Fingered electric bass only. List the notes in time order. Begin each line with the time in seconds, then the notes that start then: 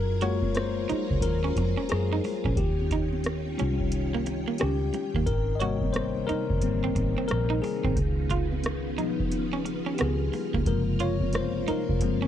Already playing: F#2
0.92 muted fingered electric bass stroke
1.12 C#2
1.22 D#2
1.57 F2
1.92 F#2
2.46 A#1
2.59 D#2
3.61 C2
4.63 C#2
5.16 D#2
5.28 G#1
6.31 muted fingered electric bass stroke
6.51 F1
6.62 G1
6.97 G#1
7.32 A#1
7.86 G#1
7.98 C#2
9.00 B1
10.01 C#2
10.55 C#2
10.68 F#1
11.70 muted fingered electric bass stroke
11.90 F1
12.01 F#1